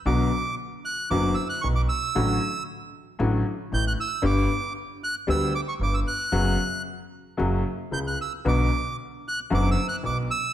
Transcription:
<<
  \new Staff \with { instrumentName = "Bandoneon" } { \time 4/4 \key b \minor \tempo 4 = 114 d'''4 r8 fis'''8 d'''8 e'''16 fis'''16 cis'''16 d'''16 e'''8~ | e'''4 r2 g'''16 fis'''16 e'''8 | d'''4 r8 fis'''8 e'''8 d'''16 cis'''16 d'''16 e'''16 fis'''8~ | fis'''4 r2 g'''16 fis'''16 e'''8 |
d'''4 r8 fis'''8 \tuplet 3/2 { d'''8 e'''8 fis'''8 } d'''8 e'''8 | }
  \new Staff \with { instrumentName = "Upright piano" } { \clef bass \time 4/4 \key b \minor <b,, b, d fis b fis'>8 r4. <fis,, fis, d fis b fis'>8 r8 <b,, b,>8 r8 | <a,, a, d fis a fis'>8 r4. <a,, a, d fis a fis'>8 r8 <a,, a,>8 r8 | <g,, g, d g b g'>8 r4. <d, d g b g'>8 r8 <g,, g,>8 r8 | <fis, cis fis b fis'>8 r4. <fis, cis fis ais fis'>8 r8 <cis, cis>8 r8 |
<b,, b, d fis b fis'>8 r4. <fis,, fis, d fis b fis'>8 r8 <b,, b,>8 r8 | }
  \new Staff \with { instrumentName = "Upright bass" } { \clef bass \time 4/4 \key b \minor b,,8 r4. fis,,8 r8 b,,8 r8 | a,,8 r4. a,,8 r8 a,,8 r8 | g,,8 r4. d,8 r8 g,,8 r8 | fis,,8 r4. fis,,8 r8 cis,8 r8 |
b,,8 r4. fis,,8 r8 b,,8 r8 | }
>>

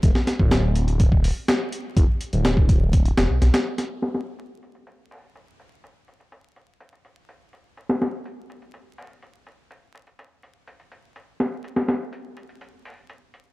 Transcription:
<<
  \new Staff \with { instrumentName = "Detuned saw bass" } { \clef bass \time 4/4 \key d \mixolydian \tempo 4 = 124 e,,16 r8 d,,4.~ d,,16 r4. | e,,16 r8 d,,4. r16 e,,16 b,,16 b,,16 r8. | r1 | r1 |
r1 | r1 | r1 | }
  \new DrumStaff \with { instrumentName = "Drums" } \drummode { \time 4/4 <hh bd>16 sn16 <hh sn>16 bd16 <hh sn>8 hh16 hh16 <hh bd>16 bd16 hho8 <hh sn>8 hh8 | <hh bd>8 hh16 hh16 <hh sn>16 bd16 <hh bd>8 <hh bd>16 hh16 <hh sn>8 <hh sn>16 <hh sn>8 <hh sn>16 | hh16 sn16 <hh sn>8 hh8 hh16 hh16 hh8 hho8 hh8 hh8 | hh8 hh16 hh16 hh8 hh8 hh16 hh16 hh8 hh8 hh8 |
hh16 sn16 <hh sn>8 hh8 hh16 hh16 hh8 hho8 hh8 hh8 | hh8 hh16 hh16 hh8 hh8 hh16 hh16 hh8 hh8 <hh sn>8 | hh16 sn16 <hh sn>8 hh8 hh16 hh16 hh8 hho8 hh8 hh8 | }
>>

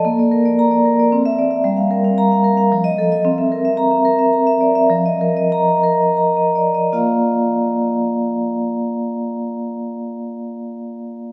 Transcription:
\new Staff \with { instrumentName = "Vibraphone" } { \time 3/4 \key bes \major \tempo 4 = 101 << { r4 bes''8 r8. e''8 r16 | r4 bes''8 r8. ees''8 r16 | r4 bes''8 r4. | r4 bes''8 r4. |
<bes f' d'' f'' bes''>2.~ | <bes f' d'' f'' bes''>2. | } \\ { bes16 d''16 bes'16 d''8 d''16 bes'16 d''16 c'8 d''16 e''16 | g16 f''16 bes'16 f''8 f''16 bes'16 f''16 f8 a'16 ees''16 | c'16 e''16 bes'16 e''8 e''16 bes'16 e''16 bes''16 e''16 d''16 e''16 | f16 ees''16 bes'16 ees''8 ees''16 bes'16 ees''16 bes''16 ees''16 d''16 ees''16 |
r2. | r2. | } >> }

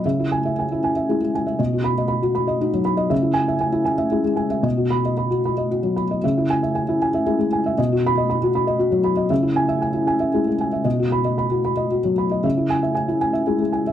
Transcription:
<<
  \new Staff \with { instrumentName = "Felt piano" } { \time 3/4 \key cis \minor \tempo 4 = 116 << { r8 gis''8 r2 | r8 b''8 r2 | r8 gis''8 r2 | r8 b''8 r2 |
r8 gis''8 r2 | r8 b''8 r2 | r8 gis''8 r2 | r8 b''8 r2 |
r8 gis''8 r2 | } \\ { e''16 e'8 e''16 gis''16 e'16 gis''16 e''16 e'16 gis16 gis''16 e''16 | dis''16 fis'8 dis''16 b''16 fis'16 b''16 dis''16 fis'16 fis16 b''16 dis''16 | e''16 e'8 e''16 gis''16 e'16 gis''16 e''16 e'16 gis16 gis''16 e''16 | dis''16 fis'8 dis''16 b''16 fis'16 b''16 dis''16 fis'16 fis16 b''16 dis''16 |
e''16 e'8 e''16 gis''16 e'16 gis''16 e''16 e'16 gis16 gis''16 e''16 | dis''16 fis'8 dis''16 b''16 fis'16 b''16 dis''16 fis'16 fis16 b''16 dis''16 | e''16 e'8 e''16 gis''16 e'16 gis''16 e''16 e'16 gis16 gis''16 e''16 | dis''16 fis'8 dis''16 b''16 fis'16 b''16 dis''16 fis'16 fis16 b''16 dis''16 |
e''16 e'8 e''16 gis''16 e'16 gis''16 e''16 e'16 gis16 gis''16 e''16 | } >> }
  \new Staff \with { instrumentName = "Felt piano" } { \clef bass \time 3/4 \key cis \minor cis2 gis8 r8 | b,2 dis'8 r8 | cis2 gis8 r8 | b,2. |
cis2 gis8 r8 | b,2. | cis2 gis8 r8 | b,2. |
cis2 gis8 r8 | }
>>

